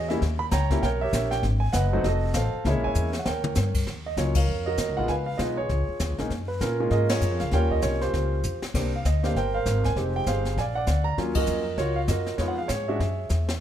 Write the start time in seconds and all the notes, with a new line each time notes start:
Already playing: E2 F#4 G#4 C#5 D#5
0.09 G3 A#3 C#4 E4 E5, snare
0.21 D#2, brush sweep, kick, snare
0.39 B5
0.51 C#2 C#5 G5 A#5, kick, snare, hi-hat pedal
0.70 G3 A#3 C#4 E4, kick, snare
0.82 B1 A#4 C#5 G5, brush sweep, kick, snare
1.01 G4 C#5 E5
1.13 A#1, kick, snare, hi-hat pedal
1.31 G5, snare
1.43 G#1, brush sweep, kick, snare
1.60 G#5
1.73 F#1 B4 D#5 F#5, kick, snare, hi-hat pedal
1.93 F#3 A3 C4 D#4
2.04 F1 F#4 A4 D#5, brush sweep, kick, snare
2.34 A1 A4 C5 F5, kick, snare, hi-hat pedal
2.53 muted upright bass stroke
2.65 C#2 G#3 A#3 C#4 E4 E5, brush sweep, kick, snare
2.69 G#4 C#5
2.75 A#1
2.84 G#1 C#5 E5 G#5
2.95 E2, hi-hat pedal
3.13 snare
3.19 F#5
3.26 D#2 A#4 C#5 G5, snare
3.44 mid tom
3.55 G2, snare, hi-hat pedal
3.74 kick, crash
3.87 D#2, brush sweep, kick, snare
4.06 D#5
4.17 C#2 F#3 A#3 C#4 F4 C#5, kick, snare, hi-hat pedal
4.35 A#4 C#5 F5, kick, ride
4.47 F2, brush sweep
4.66 F#4 A#4 D#5
4.78 D#2, kick, snare, hi-hat pedal
4.89 C#2
4.97 A#1 G#3 B3 D#4 F4 F#5
5.08 C#2 B4 F5 G#5, brush sweep, kick, snare
5.26 F5
5.38 B1 G#3 B3 D#4 F4 D#5, kick, snare, hi-hat pedal
5.57 F4 G#4 C#5
5.69 C#2, brush sweep, kick, snare
5.89 muted upright bass stroke
5.99 D#2, kick, snare, hi-hat pedal
6.10 C#2
6.18 B1 G#3 A#3 C#4 D#4, snare
6.30 F#2, brush sweep, kick, snare
6.48 B4
6.61 A#2 C#4 F4 A#4, kick, snare, hi-hat pedal
6.80 G#3 A#3 C#4 F4
6.91 G#2 G#4 A#4 D#5, brush sweep, kick, snare
7.09 F4 A#4 C#5, snare, ride
7.21 F#2, hi-hat pedal
7.31 F2
7.40 C#2 F5, snare
7.51 D#2 G3 A#3 C#4 F4 A#4 C#5 G5, brush sweep, kick, snare
7.71 D#5, kick
7.82 C2 C#5, kick, snare, hi-hat pedal
8.01 F4 G4 C5, snare
8.13 C#2, brush sweep, kick, snare
8.43 F2, hi-hat pedal
8.62 muted upright bass stroke, snare
8.74 C2 A#3 C4 D4 G4, brush sweep, kick, snare, crash
8.96 F5
9.05 D2 D#5, kick, snare, hi-hat pedal
9.23 A#3 C4 D4 G4 F5, snare
9.35 G1 A#4 C5 G5, brush sweep, kick, snare
9.54 A#4 C5 F5
9.66 G#1, kick, snare, hi-hat pedal
9.84 G#5, kick, snare
9.96 F1 G#3 C4 D#4 G4, brush sweep, kick, snare
10.16 G5
10.26 G1 G#4 C5 F5, kick, snare, hi-hat pedal
10.45 snare
10.57 A#1 D5 G#5, brush sweep, kick, snare
10.61 F5
10.75 D5 F#5
10.87 D2, kick, snare, hi-hat pedal
11.04 A#5
11.17 D#2 F#3 A#3 C#4 F4, brush sweep, kick, snare
11.35 F#4 A#4 D#5, kick, ride
11.46 F2, hi-hat pedal
11.78 C#2 F4 F#4 C#5, brush sweep, kick, snare
11.96 F5
12.08 F#2 F#4 A#4 D#5, kick, snare, hi-hat pedal
12.26 snare
12.38 F2 G#3 B3 D#4 F4 G#4 C#5, brush sweep, kick, snare
12.48 F#5
12.58 F5
12.68 G#2 C#5, kick, snare, hi-hat pedal
12.88 G#3 C#4 D4 F#4 G#4 C#5 E5
13.00 F#2, brush sweep, kick, snare
13.29 E2, snare, hi-hat pedal
13.49 snare